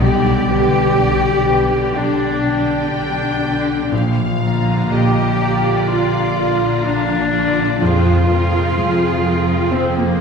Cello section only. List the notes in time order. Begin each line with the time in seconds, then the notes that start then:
0.02 G4
1.96 D4
2.94 D4
4.91 G4
5.89 F4
6.86 D4
7.82 F4
9.72 C4
9.97 A#3